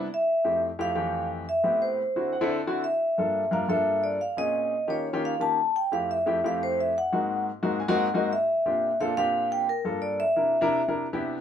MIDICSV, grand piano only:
0, 0, Header, 1, 2, 480
1, 0, Start_track
1, 0, Key_signature, -1, "major"
1, 0, Tempo, 342270
1, 140, Time_signature, 4, 2, 24, 8
1, 15999, End_track
2, 0, Start_track
2, 0, Title_t, "Grand piano"
2, 0, Program_c, 0, 0
2, 624, Note_on_c, 0, 41, 65
2, 625, Note_on_c, 0, 57, 60
2, 625, Note_on_c, 0, 67, 71
2, 626, Note_on_c, 0, 64, 55
2, 630, Note_on_c, 0, 60, 65
2, 958, Note_off_c, 0, 41, 0
2, 959, Note_off_c, 0, 57, 0
2, 959, Note_off_c, 0, 67, 0
2, 960, Note_off_c, 0, 64, 0
2, 961, Note_off_c, 0, 60, 0
2, 1104, Note_on_c, 0, 60, 69
2, 1106, Note_on_c, 0, 41, 77
2, 1106, Note_on_c, 0, 57, 68
2, 1106, Note_on_c, 0, 64, 77
2, 1108, Note_on_c, 0, 67, 87
2, 1270, Note_off_c, 0, 60, 0
2, 1271, Note_off_c, 0, 57, 0
2, 1272, Note_off_c, 0, 41, 0
2, 1272, Note_off_c, 0, 64, 0
2, 1272, Note_off_c, 0, 67, 0
2, 1336, Note_on_c, 0, 41, 80
2, 1338, Note_on_c, 0, 67, 86
2, 1339, Note_on_c, 0, 57, 66
2, 1340, Note_on_c, 0, 60, 70
2, 1341, Note_on_c, 0, 52, 73
2, 2010, Note_off_c, 0, 41, 0
2, 2011, Note_off_c, 0, 67, 0
2, 2012, Note_off_c, 0, 57, 0
2, 2012, Note_off_c, 0, 60, 0
2, 2013, Note_off_c, 0, 52, 0
2, 2296, Note_on_c, 0, 45, 73
2, 2300, Note_on_c, 0, 67, 71
2, 2302, Note_on_c, 0, 59, 68
2, 2302, Note_on_c, 0, 60, 64
2, 2802, Note_off_c, 0, 45, 0
2, 2804, Note_off_c, 0, 67, 0
2, 2805, Note_off_c, 0, 59, 0
2, 2805, Note_off_c, 0, 60, 0
2, 3028, Note_on_c, 0, 60, 70
2, 3029, Note_on_c, 0, 64, 62
2, 3030, Note_on_c, 0, 50, 70
2, 3031, Note_on_c, 0, 66, 73
2, 3261, Note_on_c, 0, 78, 73
2, 3276, Note_off_c, 0, 60, 0
2, 3276, Note_off_c, 0, 64, 0
2, 3277, Note_off_c, 0, 50, 0
2, 3278, Note_off_c, 0, 66, 0
2, 3377, Note_on_c, 0, 60, 94
2, 3379, Note_on_c, 0, 50, 100
2, 3381, Note_on_c, 0, 64, 101
2, 3384, Note_on_c, 0, 69, 100
2, 3484, Note_off_c, 0, 78, 0
2, 3503, Note_on_c, 0, 74, 77
2, 3630, Note_off_c, 0, 60, 0
2, 3631, Note_off_c, 0, 50, 0
2, 3633, Note_off_c, 0, 64, 0
2, 3634, Note_off_c, 0, 69, 0
2, 3745, Note_on_c, 0, 50, 81
2, 3746, Note_on_c, 0, 64, 75
2, 3749, Note_on_c, 0, 60, 74
2, 3750, Note_on_c, 0, 66, 91
2, 3947, Note_off_c, 0, 74, 0
2, 3982, Note_off_c, 0, 50, 0
2, 3983, Note_off_c, 0, 64, 0
2, 3984, Note_off_c, 0, 60, 0
2, 3985, Note_off_c, 0, 66, 0
2, 4460, Note_on_c, 0, 43, 70
2, 4464, Note_on_c, 0, 58, 60
2, 4467, Note_on_c, 0, 62, 64
2, 4468, Note_on_c, 0, 69, 77
2, 4470, Note_on_c, 0, 65, 61
2, 4796, Note_off_c, 0, 43, 0
2, 4797, Note_off_c, 0, 58, 0
2, 4799, Note_off_c, 0, 62, 0
2, 4800, Note_off_c, 0, 65, 0
2, 4800, Note_off_c, 0, 69, 0
2, 4923, Note_on_c, 0, 62, 67
2, 4924, Note_on_c, 0, 43, 80
2, 4926, Note_on_c, 0, 58, 71
2, 4929, Note_on_c, 0, 65, 68
2, 4936, Note_on_c, 0, 70, 87
2, 5099, Note_off_c, 0, 62, 0
2, 5100, Note_off_c, 0, 43, 0
2, 5100, Note_off_c, 0, 58, 0
2, 5102, Note_off_c, 0, 65, 0
2, 5106, Note_off_c, 0, 70, 0
2, 5164, Note_on_c, 0, 43, 73
2, 5171, Note_on_c, 0, 58, 69
2, 5171, Note_on_c, 0, 65, 69
2, 5175, Note_on_c, 0, 62, 73
2, 5178, Note_on_c, 0, 69, 86
2, 5843, Note_off_c, 0, 43, 0
2, 5847, Note_off_c, 0, 58, 0
2, 5847, Note_off_c, 0, 65, 0
2, 5849, Note_off_c, 0, 62, 0
2, 5850, Note_off_c, 0, 69, 0
2, 6128, Note_on_c, 0, 46, 73
2, 6135, Note_on_c, 0, 60, 58
2, 6137, Note_on_c, 0, 61, 69
2, 6139, Note_on_c, 0, 68, 74
2, 6637, Note_off_c, 0, 46, 0
2, 6641, Note_off_c, 0, 60, 0
2, 6642, Note_off_c, 0, 61, 0
2, 6643, Note_off_c, 0, 68, 0
2, 6838, Note_on_c, 0, 51, 70
2, 6838, Note_on_c, 0, 65, 57
2, 6841, Note_on_c, 0, 58, 57
2, 6843, Note_on_c, 0, 67, 81
2, 6845, Note_on_c, 0, 61, 59
2, 7100, Note_off_c, 0, 51, 0
2, 7100, Note_off_c, 0, 65, 0
2, 7102, Note_off_c, 0, 58, 0
2, 7103, Note_off_c, 0, 67, 0
2, 7104, Note_off_c, 0, 61, 0
2, 7193, Note_on_c, 0, 51, 86
2, 7196, Note_on_c, 0, 61, 74
2, 7197, Note_on_c, 0, 65, 77
2, 7200, Note_on_c, 0, 58, 76
2, 7201, Note_on_c, 0, 67, 94
2, 7458, Note_off_c, 0, 51, 0
2, 7459, Note_off_c, 0, 61, 0
2, 7460, Note_off_c, 0, 65, 0
2, 7461, Note_off_c, 0, 58, 0
2, 7462, Note_off_c, 0, 67, 0
2, 7567, Note_on_c, 0, 51, 67
2, 7567, Note_on_c, 0, 58, 55
2, 7571, Note_on_c, 0, 61, 61
2, 7579, Note_on_c, 0, 65, 62
2, 7580, Note_on_c, 0, 67, 74
2, 7813, Note_off_c, 0, 51, 0
2, 7813, Note_off_c, 0, 58, 0
2, 7815, Note_off_c, 0, 61, 0
2, 7819, Note_off_c, 0, 65, 0
2, 7819, Note_off_c, 0, 67, 0
2, 8299, Note_on_c, 0, 57, 57
2, 8299, Note_on_c, 0, 60, 65
2, 8302, Note_on_c, 0, 41, 62
2, 8302, Note_on_c, 0, 64, 59
2, 8302, Note_on_c, 0, 67, 70
2, 8635, Note_off_c, 0, 57, 0
2, 8635, Note_off_c, 0, 60, 0
2, 8636, Note_off_c, 0, 41, 0
2, 8637, Note_off_c, 0, 64, 0
2, 8637, Note_off_c, 0, 67, 0
2, 8779, Note_on_c, 0, 41, 70
2, 8783, Note_on_c, 0, 57, 73
2, 8783, Note_on_c, 0, 60, 62
2, 8791, Note_on_c, 0, 64, 73
2, 8792, Note_on_c, 0, 67, 83
2, 8947, Note_off_c, 0, 41, 0
2, 8949, Note_off_c, 0, 57, 0
2, 8949, Note_off_c, 0, 60, 0
2, 8953, Note_off_c, 0, 64, 0
2, 8953, Note_off_c, 0, 67, 0
2, 9030, Note_on_c, 0, 41, 73
2, 9032, Note_on_c, 0, 57, 73
2, 9034, Note_on_c, 0, 67, 80
2, 9036, Note_on_c, 0, 64, 71
2, 9037, Note_on_c, 0, 60, 70
2, 9697, Note_off_c, 0, 41, 0
2, 9698, Note_off_c, 0, 57, 0
2, 9699, Note_off_c, 0, 67, 0
2, 9700, Note_off_c, 0, 64, 0
2, 9701, Note_off_c, 0, 60, 0
2, 9990, Note_on_c, 0, 58, 62
2, 9993, Note_on_c, 0, 44, 80
2, 9993, Note_on_c, 0, 63, 73
2, 9995, Note_on_c, 0, 60, 58
2, 9995, Note_on_c, 0, 66, 76
2, 10489, Note_off_c, 0, 58, 0
2, 10490, Note_off_c, 0, 63, 0
2, 10491, Note_off_c, 0, 44, 0
2, 10492, Note_off_c, 0, 60, 0
2, 10492, Note_off_c, 0, 66, 0
2, 10694, Note_on_c, 0, 58, 72
2, 10696, Note_on_c, 0, 63, 75
2, 10697, Note_on_c, 0, 44, 86
2, 10697, Note_on_c, 0, 66, 92
2, 10698, Note_on_c, 0, 60, 72
2, 10935, Note_on_c, 0, 80, 73
2, 10949, Note_off_c, 0, 58, 0
2, 10950, Note_off_c, 0, 44, 0
2, 10950, Note_off_c, 0, 63, 0
2, 10951, Note_off_c, 0, 60, 0
2, 10951, Note_off_c, 0, 66, 0
2, 11055, Note_on_c, 0, 58, 92
2, 11056, Note_on_c, 0, 44, 100
2, 11057, Note_on_c, 0, 60, 99
2, 11057, Note_on_c, 0, 66, 112
2, 11063, Note_on_c, 0, 63, 96
2, 11160, Note_off_c, 0, 80, 0
2, 11173, Note_on_c, 0, 78, 73
2, 11309, Note_off_c, 0, 58, 0
2, 11310, Note_off_c, 0, 44, 0
2, 11310, Note_off_c, 0, 60, 0
2, 11310, Note_off_c, 0, 66, 0
2, 11313, Note_off_c, 0, 63, 0
2, 11399, Note_off_c, 0, 78, 0
2, 11416, Note_on_c, 0, 44, 90
2, 11421, Note_on_c, 0, 58, 77
2, 11421, Note_on_c, 0, 63, 74
2, 11422, Note_on_c, 0, 75, 75
2, 11423, Note_on_c, 0, 60, 81
2, 11428, Note_on_c, 0, 66, 96
2, 11644, Note_off_c, 0, 75, 0
2, 11658, Note_off_c, 0, 44, 0
2, 11660, Note_off_c, 0, 58, 0
2, 11660, Note_off_c, 0, 63, 0
2, 11662, Note_off_c, 0, 60, 0
2, 11664, Note_off_c, 0, 66, 0
2, 12140, Note_on_c, 0, 46, 67
2, 12143, Note_on_c, 0, 60, 55
2, 12143, Note_on_c, 0, 62, 62
2, 12143, Note_on_c, 0, 67, 72
2, 12148, Note_on_c, 0, 65, 65
2, 12476, Note_off_c, 0, 46, 0
2, 12478, Note_off_c, 0, 60, 0
2, 12478, Note_off_c, 0, 62, 0
2, 12478, Note_off_c, 0, 67, 0
2, 12480, Note_off_c, 0, 65, 0
2, 12626, Note_on_c, 0, 60, 69
2, 12626, Note_on_c, 0, 62, 72
2, 12630, Note_on_c, 0, 46, 80
2, 12634, Note_on_c, 0, 69, 93
2, 12637, Note_on_c, 0, 65, 74
2, 12791, Note_off_c, 0, 60, 0
2, 12791, Note_off_c, 0, 62, 0
2, 12793, Note_off_c, 0, 46, 0
2, 12795, Note_off_c, 0, 69, 0
2, 12796, Note_off_c, 0, 65, 0
2, 12866, Note_on_c, 0, 60, 65
2, 12868, Note_on_c, 0, 46, 79
2, 12870, Note_on_c, 0, 65, 72
2, 12872, Note_on_c, 0, 62, 74
2, 12877, Note_on_c, 0, 67, 91
2, 13535, Note_off_c, 0, 60, 0
2, 13536, Note_off_c, 0, 46, 0
2, 13537, Note_off_c, 0, 65, 0
2, 13538, Note_off_c, 0, 62, 0
2, 13540, Note_off_c, 0, 67, 0
2, 13808, Note_on_c, 0, 43, 69
2, 13816, Note_on_c, 0, 58, 62
2, 13816, Note_on_c, 0, 69, 83
2, 13817, Note_on_c, 0, 65, 66
2, 14319, Note_off_c, 0, 43, 0
2, 14322, Note_off_c, 0, 69, 0
2, 14323, Note_off_c, 0, 58, 0
2, 14323, Note_off_c, 0, 65, 0
2, 14531, Note_on_c, 0, 64, 57
2, 14533, Note_on_c, 0, 62, 59
2, 14535, Note_on_c, 0, 48, 60
2, 14536, Note_on_c, 0, 70, 70
2, 14788, Note_off_c, 0, 64, 0
2, 14789, Note_off_c, 0, 62, 0
2, 14790, Note_off_c, 0, 48, 0
2, 14790, Note_off_c, 0, 70, 0
2, 14881, Note_on_c, 0, 62, 95
2, 14887, Note_on_c, 0, 48, 91
2, 14890, Note_on_c, 0, 64, 90
2, 14892, Note_on_c, 0, 70, 110
2, 15143, Note_off_c, 0, 62, 0
2, 15146, Note_off_c, 0, 48, 0
2, 15147, Note_off_c, 0, 64, 0
2, 15148, Note_off_c, 0, 70, 0
2, 15260, Note_on_c, 0, 62, 72
2, 15261, Note_on_c, 0, 48, 79
2, 15261, Note_on_c, 0, 64, 72
2, 15267, Note_on_c, 0, 70, 91
2, 15501, Note_off_c, 0, 48, 0
2, 15501, Note_off_c, 0, 62, 0
2, 15501, Note_off_c, 0, 64, 0
2, 15504, Note_off_c, 0, 70, 0
2, 15608, Note_on_c, 0, 59, 74
2, 15609, Note_on_c, 0, 62, 73
2, 15611, Note_on_c, 0, 64, 84
2, 15612, Note_on_c, 0, 48, 80
2, 15612, Note_on_c, 0, 67, 86
2, 15951, Note_off_c, 0, 59, 0
2, 15951, Note_off_c, 0, 62, 0
2, 15952, Note_off_c, 0, 48, 0
2, 15952, Note_off_c, 0, 64, 0
2, 15953, Note_off_c, 0, 67, 0
2, 15999, End_track
0, 0, End_of_file